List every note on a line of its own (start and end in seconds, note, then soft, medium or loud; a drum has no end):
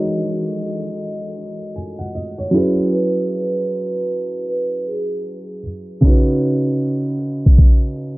0.00 2.47 G#3 medium
0.00 2.48 D#4 medium
0.00 2.48 F#4 medium
0.00 2.49 A#4 medium
0.00 1.72 C#5 medium
0.00 2.35 D#5 medium
1.76 1.99 G#5 soft
1.99 2.12 F#5 medium
2.15 2.38 D#5 medium
2.38 2.75 C#5 medium
2.51 5.59 F#3 medium
2.51 5.60 C#4 medium
2.51 5.61 E4 medium
2.55 5.62 G#4 medium
2.55 5.62 B4 medium
2.92 4.43 B4 medium
4.49 4.83 B4 medium
4.87 5.22 G#4 medium
6.01 8.18 C#3 medium
6.01 8.18 C#4 medium
6.01 8.18 D#4 medium
6.01 kick loud
6.06 8.18 F#4 medium
6.06 8.18 B4 medium
6.41 closed hi-hat medium
7.19 closed hi-hat medium
7.46 kick medium
7.58 kick medium
7.96 closed hi-hat medium